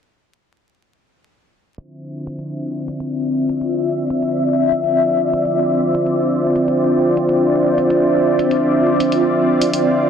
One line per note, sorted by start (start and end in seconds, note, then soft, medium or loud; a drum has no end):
1.77 10.10 C4 loud
1.77 10.10 D4 medium
1.77 10.10 F4 medium
1.77 10.10 C5 medium
1.77 10.10 E5 medium
1.77 closed hi-hat medium
2.23 10.10 D5 medium
2.27 closed hi-hat medium
2.39 closed hi-hat soft
2.50 10.10 F4 medium
2.70 7.28 E5 medium
2.88 closed hi-hat medium
3.00 closed hi-hat medium
3.49 closed hi-hat medium
3.61 closed hi-hat soft
4.10 closed hi-hat medium
4.23 closed hi-hat medium
4.72 closed hi-hat medium
4.84 closed hi-hat soft
5.33 closed hi-hat medium
5.45 closed hi-hat medium
5.95 closed hi-hat medium
6.06 closed hi-hat medium
6.56 closed hi-hat medium
6.68 closed hi-hat soft
7.17 closed hi-hat medium
7.29 closed hi-hat medium
7.78 closed hi-hat medium
7.90 closed hi-hat medium
8.39 closed hi-hat medium
8.51 closed hi-hat medium
9.00 closed hi-hat medium
9.12 closed hi-hat medium
9.61 closed hi-hat medium
9.74 closed hi-hat soft